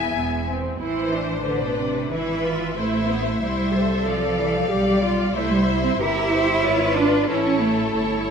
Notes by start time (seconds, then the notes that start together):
Already playing: B3 E4 E5 G#5
0.14 E1 E2 B3
0.48 C4
0.81 A1 E3 E4 C5
1.14 D4
1.47 D3 B4
1.63 B2
1.79 C3
2.12 G#1 E3 E4 B4 E5
2.45 F4
2.77 A1 A3 E4 C5 E5
3.10 B3
3.27 A3
3.42 C2 G3 E4 C5
3.75 A4
4.06 F3 D5 F5
4.38 E3
4.55 F3
4.71 B1 G3 G4 D5
5.04 F4
5.35 C2 A3 E4 C5 E5
5.52 G3
5.84 C4
5.99 G1 E4 G4 A#4 E5
6.32 C5
6.63 G#1 F4 B4 C#5
6.95 D4 B4
7.27 A1 C#4 E4 A4 C#5
7.45 C#4
7.61 A3
7.93 G1 E4 C#5